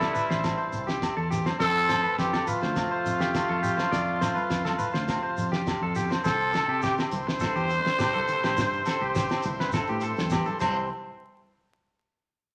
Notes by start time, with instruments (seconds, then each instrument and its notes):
Already playing: nylon-string guitar E3 G3 C4 E4, tenor saxophone G3, trumpet E4, transistor combo organ E5 A5 C6
0.00 clean electric guitar A4, snare, high conga, low agogo
0.14 clean electric guitar B4, low conga, shekere
0.30 fingered electric bass A1, clean electric guitar C5, snare
0.43 nylon-string guitar G2 C4, kick, snare, low agogo, shekere
0.58 clean electric guitar C5
0.72 fingered electric bass C2, shekere
0.87 clean electric guitar G4, snare, shekere
1.01 muted nylon-string guitar stroke, kick, snare, low agogo, shekere
1.17 fingered electric bass E2, clean electric guitar A4
1.30 nylon-string guitar E3, clean electric guitar G4, snare, low conga, shekere
1.46 clean electric guitar C5, snare, high conga, low agogo
1.60 nylon-string guitar F2, fingered electric bass F2, tenor saxophone C4, trumpet A4, transistor combo organ F5, muted clean electric guitar stroke, kick, snare, shekere
1.89 nylon-string guitar A3, clean electric guitar C5, snare, high conga, low agogo, shekere
2.03 clean electric guitar B4, shekere
2.18 fingered electric bass F2, nylon-string guitar F3, tenor saxophone C4, trumpet G4, kick, snare, shekere
2.33 clean electric guitar A4, snare, high conga, low agogo
2.47 tenor saxophone A3, trumpet F4, clean electric guitar B4, low conga, shekere
2.62 fingered electric bass D2, clean electric guitar C5, snare
2.76 nylon-string guitar C3 C4, kick, snare, low agogo, shekere
2.91 clean electric guitar C5
3.06 fingered electric bass F2, shekere
3.21 clean electric guitar G4, snare, shekere
3.34 nylon-string guitar F3, kick, snare, low agogo, shekere
3.49 fingered electric bass F2, clean electric guitar A4
3.63 clean electric guitar G4, muted nylon-string guitar stroke, low conga, shekere
3.77 clean electric guitar C5, snare, high conga, low agogo
3.91 nylon-string guitar F2, fingered electric bass F2, clean electric guitar D5, kick, snare, shekere
4.21 nylon-string guitar A3, clean electric guitar C5, snare, high conga, low agogo, shekere
4.36 clean electric guitar B4, high conga, shekere
4.50 fingered electric bass F2, nylon-string guitar F3, kick, snare, shekere
4.65 clean electric guitar A4, snare, high conga, low agogo
4.78 clean electric guitar B4, high conga, low conga, shekere
4.94 fingered electric bass D2, clean electric guitar C5, snare, shekere
5.08 nylon-string guitar C3 C4, kick, snare, low agogo, shekere
5.23 clean electric guitar C5
5.37 fingered electric bass F2, shekere
5.52 clean electric guitar G4, snare, low conga
5.66 nylon-string guitar A2, kick, snare, low agogo, shekere
5.82 fingered electric bass F2, clean electric guitar A4
5.95 nylon-string guitar B2, clean electric guitar G4, snare, low conga, shekere
6.10 clean electric guitar C5, snare, high conga, low agogo, shekere
6.24 fingered electric bass C2, nylon-string guitar C3 G3, trumpet A4, clean electric guitar C5, transistor combo organ E5 G5 C6, kick, snare, low conga, shekere
6.40 shekere
6.53 nylon-string guitar C4, clean electric guitar A4, snare, low conga, low agogo, shekere
6.68 fingered electric bass C3, clean electric guitar G4
6.82 nylon-string guitar E3, clean electric guitar G4, trumpet G4, kick, snare, shekere
6.98 snare, low agogo, shekere
7.11 fingered electric bass C2, nylon-string guitar E4, trumpet C5, high conga, low conga, shekere
7.27 muted clean electric guitar stroke, snare
7.40 nylon-string guitar G2, clean electric guitar A4, kick, snare, low agogo, shekere
7.55 fingered electric bass E2, clean electric guitar G4, shekere
7.70 nylon-string guitar C4, shekere
7.85 snare, high conga, shekere
7.99 fingered electric bass C2, nylon-string guitar E3 G3, clean electric guitar G4, kick, snare, low agogo, shekere
8.13 clean electric guitar A4, high conga, shekere
8.28 low conga, shekere
8.44 fingered electric bass A1, clean electric guitar G4, snare, low agogo, shekere
8.57 fingered electric bass G2, nylon-string guitar G3, clean electric guitar C5, muted nylon-string guitar stroke, kick, snare, low conga, shekere
8.73 shekere
8.86 nylon-string guitar C4, clean electric guitar A4, snare, low conga, low agogo, shekere
9.01 fingered electric bass C2, clean electric guitar G4
9.15 nylon-string guitar E3, clean electric guitar G4, kick, snare, shekere
9.29 snare, low agogo, shekere
9.42 fingered electric bass C2, nylon-string guitar E4, high conga, low conga, shekere
9.60 clean electric guitar B4, snare
9.72 nylon-string guitar G2, clean electric guitar A4, kick, snare, low agogo, shekere
9.87 fingered electric bass A2, clean electric guitar G4, shekere
10.01 nylon-string guitar C4, clean electric guitar A4, shekere
10.17 fingered electric bass E2, snare, high conga, shekere
10.30 nylon-string guitar E3 G3, clean electric guitar G4, kick, snare, low agogo, shekere
10.45 clean electric guitar A4, high conga, shekere
10.60 fingered electric bass C2, nylon-string guitar C3 E3 G3 C4, clean electric guitar C5, transistor combo organ C5 E5 G5, kick, crash, high conga, low agogo, shekere
10.64 nylon-string guitar E4